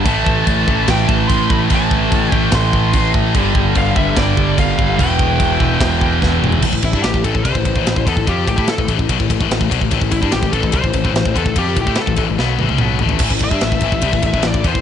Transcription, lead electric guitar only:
0, 0, Header, 1, 2, 480
1, 0, Start_track
1, 0, Key_signature, 0, "minor"
1, 0, Tempo, 411241
1, 67, Time_signature, 4, 2, 24, 8
1, 17289, End_track
2, 0, Start_track
2, 0, Title_t, "Lead electric guitar"
2, 0, Program_c, 0, 29
2, 0, Note_on_c, 0, 81, 95
2, 1049, Note_off_c, 0, 81, 0
2, 1054, Note_on_c, 0, 79, 92
2, 1261, Note_off_c, 0, 79, 0
2, 1266, Note_on_c, 0, 81, 103
2, 1489, Note_on_c, 0, 84, 114
2, 1514, Note_off_c, 0, 81, 0
2, 1746, Note_off_c, 0, 84, 0
2, 1762, Note_on_c, 0, 83, 100
2, 1825, Note_off_c, 0, 83, 0
2, 2042, Note_on_c, 0, 81, 120
2, 2742, Note_off_c, 0, 81, 0
2, 2742, Note_on_c, 0, 79, 120
2, 2973, Note_on_c, 0, 84, 93
2, 3003, Note_off_c, 0, 79, 0
2, 3633, Note_off_c, 0, 84, 0
2, 4410, Note_on_c, 0, 77, 97
2, 4625, Note_off_c, 0, 77, 0
2, 4630, Note_on_c, 0, 76, 86
2, 4863, Note_off_c, 0, 76, 0
2, 4868, Note_on_c, 0, 74, 88
2, 5360, Note_off_c, 0, 74, 0
2, 5367, Note_on_c, 0, 77, 92
2, 5827, Note_on_c, 0, 79, 97
2, 5849, Note_off_c, 0, 77, 0
2, 7216, Note_off_c, 0, 79, 0
2, 7993, Note_on_c, 0, 64, 93
2, 8202, Note_off_c, 0, 64, 0
2, 8207, Note_on_c, 0, 67, 90
2, 8446, Note_off_c, 0, 67, 0
2, 8454, Note_on_c, 0, 69, 81
2, 8677, Note_off_c, 0, 69, 0
2, 8681, Note_on_c, 0, 72, 82
2, 9388, Note_off_c, 0, 72, 0
2, 9436, Note_on_c, 0, 69, 70
2, 9661, Note_off_c, 0, 69, 0
2, 9670, Note_on_c, 0, 67, 86
2, 9891, Note_off_c, 0, 67, 0
2, 9905, Note_on_c, 0, 67, 75
2, 10135, Note_off_c, 0, 67, 0
2, 10149, Note_on_c, 0, 69, 89
2, 10377, Note_off_c, 0, 69, 0
2, 11807, Note_on_c, 0, 64, 92
2, 12045, Note_off_c, 0, 64, 0
2, 12050, Note_on_c, 0, 67, 80
2, 12285, Note_on_c, 0, 69, 91
2, 12288, Note_off_c, 0, 67, 0
2, 12525, Note_off_c, 0, 69, 0
2, 12542, Note_on_c, 0, 72, 97
2, 13240, Note_off_c, 0, 72, 0
2, 13281, Note_on_c, 0, 69, 93
2, 13504, Note_off_c, 0, 69, 0
2, 13521, Note_on_c, 0, 67, 85
2, 13744, Note_off_c, 0, 67, 0
2, 13789, Note_on_c, 0, 67, 92
2, 13999, Note_off_c, 0, 67, 0
2, 14014, Note_on_c, 0, 69, 100
2, 14231, Note_off_c, 0, 69, 0
2, 15686, Note_on_c, 0, 76, 101
2, 16607, Note_off_c, 0, 76, 0
2, 16652, Note_on_c, 0, 76, 98
2, 16872, Note_off_c, 0, 76, 0
2, 16890, Note_on_c, 0, 74, 101
2, 17111, Note_off_c, 0, 74, 0
2, 17118, Note_on_c, 0, 72, 72
2, 17289, Note_off_c, 0, 72, 0
2, 17289, End_track
0, 0, End_of_file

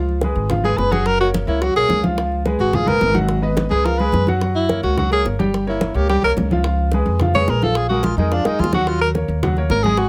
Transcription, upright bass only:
0, 0, Header, 1, 2, 480
1, 0, Start_track
1, 0, Tempo, 278940
1, 1824, Time_signature, 4, 2, 24, 8
1, 17359, End_track
2, 0, Start_track
2, 0, Title_t, "Upright bass"
2, 0, Program_c, 0, 32
2, 0, Note_on_c, 0, 37, 92
2, 521, Note_off_c, 0, 37, 0
2, 610, Note_on_c, 0, 32, 88
2, 1286, Note_off_c, 0, 32, 0
2, 1331, Note_on_c, 0, 30, 81
2, 2445, Note_off_c, 0, 30, 0
2, 2531, Note_on_c, 0, 37, 86
2, 2985, Note_off_c, 0, 37, 0
2, 3010, Note_on_c, 0, 35, 67
2, 3235, Note_off_c, 0, 35, 0
2, 3245, Note_on_c, 0, 37, 93
2, 4365, Note_off_c, 0, 37, 0
2, 4454, Note_on_c, 0, 32, 86
2, 5131, Note_off_c, 0, 32, 0
2, 5182, Note_on_c, 0, 32, 97
2, 6295, Note_off_c, 0, 32, 0
2, 6379, Note_on_c, 0, 37, 80
2, 7055, Note_off_c, 0, 37, 0
2, 7103, Note_on_c, 0, 42, 80
2, 8216, Note_off_c, 0, 42, 0
2, 8311, Note_on_c, 0, 37, 92
2, 8982, Note_off_c, 0, 37, 0
2, 9022, Note_on_c, 0, 31, 82
2, 10136, Note_off_c, 0, 31, 0
2, 10227, Note_on_c, 0, 37, 92
2, 10677, Note_off_c, 0, 37, 0
2, 10708, Note_on_c, 0, 36, 67
2, 10934, Note_off_c, 0, 36, 0
2, 10953, Note_on_c, 0, 37, 99
2, 12060, Note_off_c, 0, 37, 0
2, 12144, Note_on_c, 0, 41, 90
2, 12817, Note_off_c, 0, 41, 0
2, 12869, Note_on_c, 0, 34, 98
2, 13976, Note_off_c, 0, 34, 0
2, 14053, Note_on_c, 0, 41, 87
2, 14506, Note_off_c, 0, 41, 0
2, 14545, Note_on_c, 0, 41, 66
2, 14770, Note_off_c, 0, 41, 0
2, 14780, Note_on_c, 0, 39, 92
2, 15889, Note_off_c, 0, 39, 0
2, 15972, Note_on_c, 0, 39, 89
2, 16647, Note_off_c, 0, 39, 0
2, 16683, Note_on_c, 0, 32, 89
2, 17359, Note_off_c, 0, 32, 0
2, 17359, End_track
0, 0, End_of_file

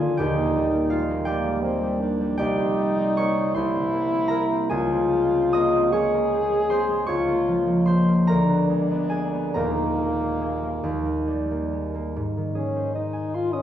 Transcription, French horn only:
0, 0, Header, 1, 2, 480
1, 0, Start_track
1, 0, Key_signature, -4, "major"
1, 0, Tempo, 715137
1, 131, Time_signature, 6, 3, 24, 8
1, 1091, Tempo, 755668
1, 1571, Tempo, 774194
1, 3011, Tempo, 823045
1, 3491, Tempo, 779221
1, 4931, Tempo, 843882
1, 5891, Tempo, 869565
1, 7331, Tempo, 780234
1, 8229, End_track
2, 0, Start_track
2, 0, Title_t, "French horn"
2, 0, Program_c, 0, 60
2, 0, Note_on_c, 0, 65, 76
2, 132, Note_on_c, 0, 63, 93
2, 142, Note_off_c, 0, 65, 0
2, 675, Note_off_c, 0, 63, 0
2, 850, Note_on_c, 0, 58, 72
2, 1092, Note_on_c, 0, 60, 82
2, 1101, Note_off_c, 0, 58, 0
2, 1329, Note_on_c, 0, 62, 77
2, 1339, Note_off_c, 0, 60, 0
2, 1583, Note_on_c, 0, 63, 95
2, 1592, Note_off_c, 0, 62, 0
2, 2296, Note_on_c, 0, 64, 96
2, 2305, Note_off_c, 0, 63, 0
2, 3010, Note_off_c, 0, 64, 0
2, 3016, Note_on_c, 0, 65, 94
2, 3732, Note_on_c, 0, 68, 99
2, 3741, Note_off_c, 0, 65, 0
2, 4442, Note_off_c, 0, 68, 0
2, 4445, Note_on_c, 0, 65, 91
2, 4982, Note_off_c, 0, 65, 0
2, 5166, Note_on_c, 0, 62, 84
2, 5894, Note_on_c, 0, 58, 81
2, 5902, Note_off_c, 0, 62, 0
2, 6974, Note_off_c, 0, 58, 0
2, 7574, Note_on_c, 0, 61, 74
2, 7810, Note_on_c, 0, 63, 75
2, 7819, Note_off_c, 0, 61, 0
2, 8061, Note_on_c, 0, 65, 96
2, 8070, Note_off_c, 0, 63, 0
2, 8179, Note_on_c, 0, 61, 81
2, 8188, Note_off_c, 0, 65, 0
2, 8229, Note_off_c, 0, 61, 0
2, 8229, End_track
0, 0, End_of_file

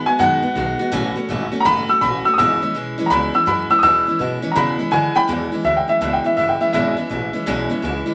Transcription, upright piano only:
0, 0, Header, 1, 2, 480
1, 0, Start_track
1, 0, Key_signature, 4, "major"
1, 0, Tempo, 363416
1, 1227, Time_signature, 4, 2, 24, 8
1, 10754, End_track
2, 0, Start_track
2, 0, Title_t, "Upright piano"
2, 0, Program_c, 0, 0
2, 81, Note_on_c, 0, 80, 99
2, 253, Note_off_c, 0, 80, 0
2, 257, Note_on_c, 0, 78, 102
2, 1194, Note_off_c, 0, 78, 0
2, 2118, Note_on_c, 0, 82, 86
2, 2162, Note_off_c, 0, 82, 0
2, 2184, Note_on_c, 0, 83, 122
2, 2488, Note_off_c, 0, 83, 0
2, 2501, Note_on_c, 0, 88, 89
2, 2660, Note_on_c, 0, 83, 103
2, 2664, Note_off_c, 0, 88, 0
2, 2965, Note_off_c, 0, 83, 0
2, 2975, Note_on_c, 0, 88, 90
2, 3087, Note_on_c, 0, 87, 69
2, 3126, Note_off_c, 0, 88, 0
2, 3129, Note_off_c, 0, 87, 0
2, 3146, Note_on_c, 0, 88, 105
2, 3612, Note_off_c, 0, 88, 0
2, 4043, Note_on_c, 0, 82, 76
2, 4086, Note_off_c, 0, 82, 0
2, 4098, Note_on_c, 0, 83, 112
2, 4404, Note_off_c, 0, 83, 0
2, 4422, Note_on_c, 0, 88, 98
2, 4583, Note_off_c, 0, 88, 0
2, 4585, Note_on_c, 0, 83, 99
2, 4887, Note_off_c, 0, 83, 0
2, 4894, Note_on_c, 0, 88, 92
2, 5004, Note_on_c, 0, 87, 73
2, 5041, Note_off_c, 0, 88, 0
2, 5046, Note_off_c, 0, 87, 0
2, 5061, Note_on_c, 0, 88, 111
2, 5528, Note_off_c, 0, 88, 0
2, 5963, Note_on_c, 0, 82, 69
2, 6005, Note_off_c, 0, 82, 0
2, 6025, Note_on_c, 0, 83, 98
2, 6490, Note_off_c, 0, 83, 0
2, 6494, Note_on_c, 0, 80, 96
2, 6801, Note_off_c, 0, 80, 0
2, 6811, Note_on_c, 0, 79, 101
2, 6820, Note_on_c, 0, 83, 113
2, 6969, Note_off_c, 0, 79, 0
2, 6981, Note_off_c, 0, 83, 0
2, 7458, Note_on_c, 0, 76, 89
2, 7616, Note_off_c, 0, 76, 0
2, 7617, Note_on_c, 0, 79, 86
2, 7775, Note_off_c, 0, 79, 0
2, 7780, Note_on_c, 0, 76, 91
2, 7922, Note_off_c, 0, 76, 0
2, 7942, Note_on_c, 0, 76, 72
2, 8098, Note_off_c, 0, 76, 0
2, 8099, Note_on_c, 0, 79, 88
2, 8257, Note_off_c, 0, 79, 0
2, 8267, Note_on_c, 0, 76, 83
2, 8390, Note_off_c, 0, 76, 0
2, 8410, Note_on_c, 0, 76, 91
2, 8570, Note_on_c, 0, 79, 81
2, 8572, Note_off_c, 0, 76, 0
2, 8730, Note_on_c, 0, 76, 85
2, 8732, Note_off_c, 0, 79, 0
2, 8866, Note_off_c, 0, 76, 0
2, 8886, Note_on_c, 0, 76, 91
2, 10294, Note_off_c, 0, 76, 0
2, 10754, End_track
0, 0, End_of_file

